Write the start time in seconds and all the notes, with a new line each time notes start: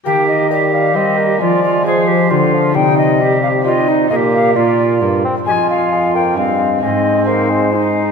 0.04 D#3 A#3 G4 A#4 G5
0.28 D#5
0.51 G3 G4
0.72 G3 F5
0.94 G3 C4 G4 A#4 D#5
1.18 A#3
1.36 F3 G#3 C4 F4 G#4 D5
1.41 F3
1.63 F4
1.81 C4 F4 G#4
1.86 G#4 C5
2.08 G4
2.30 D3 G3 F4
2.53 F3
2.71 C3 C4 D#4 G4 G5
2.75 C3 G3 D#4
2.98 D#5
3.21 G4
3.43 F5
3.61 G3 C4 D#4 F4 G4
3.66 D#5
3.88 D#4
4.07 A#2 A#3 F4 A#4 D#5
4.11 G#4
4.16 G4
4.33 F5
4.52 A#2 A#3 F4 A#4 D5
5.01 G2 A#3
5.24 C4
5.43 F2 G#3 C4 F4 G#4 G#5
5.47 F2 G4
5.52 F4
5.70 F5
5.92 G#3
6.14 A#3 G5
6.33 G2 C4 F4 G#4
6.37 G2 G#3 F5
6.78 G#2 C4 D#4 G#4 D#5
6.82 G#2 G#3 C4
7.24 A#3 C4 D#4 G#4 C5
7.50 G#3
7.72 G#3 D#4 F4